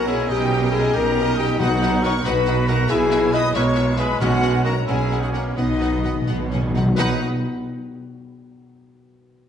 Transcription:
Already playing: double bass section B1, cello section B2, harp B2 F#3 A#3 A#4 C#5 F#5 C#6, viola section C#4 A#4, clarinet C#4, violin section F#5
0.07 cor anglais E4, harp F#4, french horn section G#4, flute section G#5, violin section G#5
0.18 harp A#3
0.28 double bass section B1, harp B2, cello section B2, cor anglais D#4, viola section D#4 A#4, french horn section G4, violin section D#5 G5, flute section G5
0.40 harp G3
0.50 harp A#3, viola section D#4 A#4, violin section D#5
0.61 harp D#4
0.71 cor anglais E4, french horn section G#4, harp D#5, flute section G#5, violin section G#5
0.83 harp A#4
0.94 double bass section B1, cello section B2, cor anglais G4, french horn section A#4, harp D#5, flute section A#5, violin section A#5
1.05 harp D#6
1.16 viola section D#4 A#4, harp D#5, violin section D#5
1.27 harp D#4
1.36 harp A#3, cor anglais D#4, french horn section G4, flute section G5, violin section G5
1.48 harp G3
1.58 double bass section B1, harp B2, cello section B2, timpani B2, clarinet D#4, cor anglais D#4, viola section D#4 B4, french horn section F#4, flute section F#5, violin section F#5
1.70 harp F#3
1.81 harp B3, viola section D#4 B4, violin section F#5
1.91 harp D#4
2.02 viola section D#4 B4, harp F#4, cor anglais A#4, french horn section C#5, violin section F#5 C#6, flute section C#6
2.14 harp D#4
2.24 double bass section B1, cello section B2, viola section D#4 B4, cor anglais F#4, french horn section B4, harp D#5, violin section F#5 B5, flute section B5
2.35 harp F#5
2.46 viola section D#4 B4, harp D#5, violin section F#5
2.68 harp D#4, viola section D#4 B4, cor anglais F#4, french horn section A#4, violin section F#5 A#5, flute section A#5
2.89 double bass section B1, harp B2, cello section B2, clarinet E4, viola section E4 B4, cor anglais E4, french horn section G#4, violin section E5 G#5, flute section G#5
3.01 harp G#3
3.11 harp B3, viola section E4 B4, violin section E5
3.24 harp E4
3.33 viola section E4 B4, cor anglais B4, french horn section D#5, violin section E5 D#6, flute section D#6
3.45 harp E4
3.54 double bass section B1, cello section B2, clarinet G#3, viola section E4 B4, cor anglais A#4, french horn section C#5, violin section E5 C#6, harp E5, flute section C#6
3.67 harp G#5
3.75 viola section E4 B4, violin section E5
3.89 harp B4
3.98 viola section E4 B4, harp E4, cor anglais G#4, french horn section B4, violin section E5 B5, flute section B5
4.11 harp B3
4.19 double bass section B1, cello section B2, timpani B2, harp B2, cor anglais C#4, viola section C#4 A#4, french horn section F#4, flute section F#5, violin section F#5
4.33 harp F#3
4.42 viola section C#4 A#4, violin section F#5
4.55 harp F#4
4.64 viola section C#4 A#4, cor anglais F#4, french horn section A#4, harp A#4, violin section F#5 A#5, flute section A#5
4.77 harp C#5
4.85 cello section B2, viola section C#4 A#4, clarinet C#4, cor anglais E4, french horn section G#4, harp F#5, violin section F#5 G#5, flute section G#5
4.89 double bass section B1
5.00 harp A#5
5.10 viola section C#4 A#4, harp F#5, violin section F#5
5.19 cor anglais D#4, french horn section F#4, flute section F#5, violin section F#5
5.23 harp A#4
5.32 cor anglais A#3, french horn section C#4, viola section C#4 A#4, harp F#4, flute section C#5, violin section C#5 F#5
5.46 harp C#4
5.56 double bass section B1, cello section B2, harp B2, timpani B2, cor anglais B3, viola section B3 B4, clarinet B3, french horn section D#4, flute section D#5, violin section D#5 F#5
5.65 timpani B2, harp F#3
5.73 timpani B2
5.79 timpani B2, viola section B3 B4, harp B3, violin section F#5
5.89 timpani B2, harp F#4
5.97 timpani B2
6.03 timpani B2, viola section B3 B4, harp B4, violin section F#5
6.14 timpani B2, harp F#4
6.22 timpani B2, viola section B3
6.26 double bass section B1, cello section B2, timpani B2, harp F#5, violin section F#5
6.38 timpani B2, harp B5
6.46 timpani B2, viola section C#4
6.52 timpani B2, harp F#5, violin section F#5
6.63 timpani B2, harp B4
6.70 timpani B2, viola section D#4
6.76 timpani B2, harp F#4, violin section F#5
6.86 timpani B2, harp B3
6.95 double bass section B1, harp B2 B3 D#4, cello section B2, timpani B2, flute section D#4, viola section D#4 B4, french horn section B4, cor anglais B4, violin section B4 F#5
7.01 harp F#4 F#5

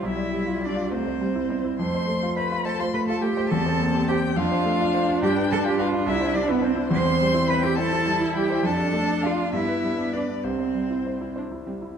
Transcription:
Already playing: viola G3
0.03 grand piano B1, cello E4, violin E5
0.17 grand piano D5
0.32 grand piano G3
0.46 grand piano F4
0.61 grand piano D5
0.65 cello D4, violin D5
0.76 grand piano F4
0.91 grand piano C2, viola A3, cello C4, violin C5
1.06 grand piano C5
1.21 viola G3, grand piano G3
1.35 grand piano E4
1.49 viola B3, grand piano C5
1.64 grand piano E4
1.77 grand piano F2, viola A3, cello C5, violin C6
1.95 grand piano C5
2.07 grand piano A3
2.23 grand piano F4
2.36 cello B4, grand piano C5, violin B5
2.51 grand piano F4
2.65 cello A4, grand piano C5, violin A5
2.79 grand piano F4, cello C5, violin C6
2.94 grand piano A3, cello B4, violin B5
3.08 grand piano F4, cello A4, violin A5
3.22 grand piano A3, cello G4, violin G5
3.37 grand piano C5
3.49 grand piano E2, viola C4, cello A4, violin A5
3.66 grand piano C5
3.79 grand piano A#3
3.94 grand piano G4
4.08 cello G4, grand piano C5, violin G5
4.22 grand piano G4
4.36 grand piano F2, viola D4, cello F4, violin F5
4.51 grand piano C5
4.65 grand piano A3
4.81 grand piano F4
4.94 grand piano C5
5.08 grand piano F4
5.22 grand piano G2, cello G4, violin G5
5.37 grand piano B4
5.51 grand piano G3, cello A4, violin A5
5.64 grand piano F4, cello G4, violin G5
5.78 cello F4, grand piano B4, violin F5
5.93 grand piano F4
6.06 grand piano C2, cello E4, violin E5
6.21 grand piano C5
6.35 grand piano G3, cello D4, violin D5
6.49 cello B3, grand piano E4, violin B4
6.62 cello C4, grand piano C5, violin C5
6.76 grand piano E4
6.91 grand piano E2, viola C4, cello C5, violin C6
7.06 grand piano C5
7.20 grand piano G3
7.34 grand piano E4
7.48 cello B4, grand piano C5, violin B5
7.62 grand piano E4, cello G4, violin G5
7.76 viola E4, cello A4, grand piano C5, violin A5
7.93 grand piano E4
8.06 grand piano G3
8.21 grand piano E4
8.35 grand piano G3, cello G4, violin G5
8.50 grand piano C5
8.63 grand piano F2, viola D4, cello A4, violin A5
8.78 grand piano D5
8.93 grand piano A3
9.08 grand piano D4
9.22 cello F4, grand piano D5, violin F5
9.38 grand piano D4
9.52 grand piano G2, viola B3, cello E4, violin E5
9.68 grand piano B4
9.83 grand piano G3
9.98 grand piano D4
10.13 cello D4, grand piano B4, violin D5
10.29 grand piano D4
10.44 grand piano C2, viola C4, cello C4, violin C5
10.59 grand piano C5
10.74 grand piano G3
10.90 grand piano E4
11.06 grand piano C5
11.21 grand piano E4
11.36 viola D4, grand piano C5
11.52 grand piano E4
11.67 grand piano G3, viola C4
11.82 grand piano E4

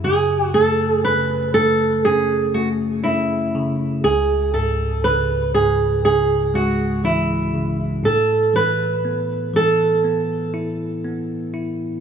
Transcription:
Already playing: tine electric piano F#2
0.04 tine electric piano C#3, nylon-string guitar G#4
0.54 tine electric piano A3, nylon-string guitar A4
0.92 nylon-string guitar G#4
1.04 tine electric piano C#3, nylon-string guitar B4
1.54 tine electric piano A3, nylon-string guitar A4
2.05 tine electric piano C#4, nylon-string guitar G#4
2.54 tine electric piano A3, nylon-string guitar F#4
3.04 tine electric piano C#4, nylon-string guitar E4
3.55 tine electric piano C#3
4.04 tine electric piano C#2, nylon-string guitar G#4
4.54 tine electric piano G#2, nylon-string guitar A4
5.04 tine electric piano C#3, nylon-string guitar B4
5.55 tine electric piano G#2, nylon-string guitar G#4
6.05 tine electric piano C#3, nylon-string guitar G#4
6.54 tine electric piano G#3, nylon-string guitar F#4
7.04 tine electric piano E3, nylon-string guitar E4
7.54 tine electric piano C#3
8.04 tine electric piano A2, nylon-string guitar A4
8.54 tine electric piano E3, nylon-string guitar B4
9.05 tine electric piano B3
9.54 tine electric piano E3, nylon-string guitar A4
10.04 tine electric piano B3
10.54 tine electric piano E4
11.04 tine electric piano B3
11.54 tine electric piano E4

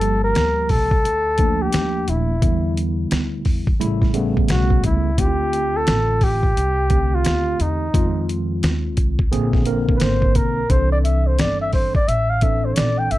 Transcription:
Already playing: upright bass G1, tine electric piano F3 G3 A#3 G4, flugelhorn A4
0.01 closed hi-hat
0.24 flugelhorn A#4
0.35 upright bass D2, snare, closed hi-hat
0.69 upright bass C2, flugelhorn A4, kick, open hi-hat
0.91 kick
1.05 upright bass D2, closed hi-hat
1.38 tine electric piano F3 A3 A#3 D4, kick, closed hi-hat
1.62 flugelhorn G4
1.72 upright bass D#2, snare, closed hi-hat
2.08 upright bass D#1, flugelhorn E4, closed hi-hat
2.41 upright bass E2, tine electric piano D3 F#3 B3 E4, kick, closed hi-hat
2.48 tine electric piano G3
2.77 closed hi-hat
3.11 upright bass D2, snare, closed hi-hat
3.45 upright bass E2, kick, open hi-hat
3.67 kick
3.80 upright bass A1, tine electric piano C#3 G3 A3 E4, closed hi-hat
4.02 kick, snare
4.14 tine electric piano C#3 G3 A3 B3, closed hi-hat
4.37 kick
4.48 upright bass B1, flugelhorn F#4, snare, closed hi-hat
4.70 kick
4.84 upright bass C#2, flugelhorn E4, kick, closed hi-hat
5.17 upright bass D2, tine electric piano D3 A3 C4 E4, flugelhorn G4, kick, closed hi-hat
5.25 tine electric piano F4
5.53 closed hi-hat
5.77 flugelhorn A4
5.87 upright bass A1, snare, closed hi-hat
6.21 flugelhorn G4, kick, open hi-hat
6.43 kick
6.57 upright bass C2, closed hi-hat
6.90 tine electric piano D3 A3 C4 G4, kick, closed hi-hat
7.15 flugelhorn F4
7.25 upright bass D2, snare, closed hi-hat
7.60 upright bass E2, flugelhorn D#4, closed hi-hat
7.94 upright bass F2, tine electric piano D#3 G#3 C4 F4, kick, closed hi-hat
8.29 closed hi-hat
8.63 upright bass D#2, snare, closed hi-hat
8.97 upright bass C2, kick, closed hi-hat
9.19 kick
9.31 upright bass A#1, tine electric piano D3 A#3 C4 G#4, closed hi-hat
9.53 kick, snare
9.65 tine electric piano D3 A#3 C4 A#4, closed hi-hat
9.89 kick
9.97 flugelhorn B4, closed hi-hat
10.01 upright bass G#1, flugelhorn C5, snare
10.22 kick
10.35 upright bass B1, flugelhorn A#4, kick, closed hi-hat
10.69 upright bass C2, tine electric piano D#3 C4 D4 A4, flugelhorn C5, kick, closed hi-hat
10.76 tine electric piano E3
10.92 flugelhorn D5
11.04 flugelhorn E5, closed hi-hat
11.27 flugelhorn C5
11.39 upright bass G1, flugelhorn D5, snare, closed hi-hat
11.61 flugelhorn E5
11.73 flugelhorn C5, kick, open hi-hat
11.95 flugelhorn D5, kick
12.08 upright bass A1, flugelhorn E5, closed hi-hat
12.30 flugelhorn F5
12.41 tine electric piano E3 C4 D4 A4, flugelhorn E5, kick, closed hi-hat
12.65 flugelhorn C5
12.74 upright bass A#1, flugelhorn C#5 D5, snare, closed hi-hat
12.99 flugelhorn G5
13.11 upright bass A1, flugelhorn E5, closed hi-hat

